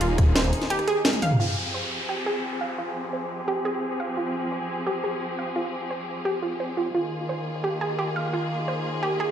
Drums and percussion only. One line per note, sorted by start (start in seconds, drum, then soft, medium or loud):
0.01 closed hi-hat loud
0.18 kick loud
0.18 cross-stick soft
0.18 closed hi-hat medium
0.36 snare loud
0.36 closed hi-hat loud
0.44 closed hi-hat soft
0.53 open hi-hat medium
0.62 snare soft
0.62 closed hi-hat soft
0.70 cross-stick soft
0.70 closed hi-hat loud
0.79 cross-stick soft
0.79 closed hi-hat soft
0.88 closed hi-hat medium
1.05 snare loud
1.05 closed hi-hat medium
1.05 high tom medium
1.14 closed hi-hat soft
1.14 high tom medium
1.22 open hi-hat medium
1.22 mid tom medium
1.31 mid tom medium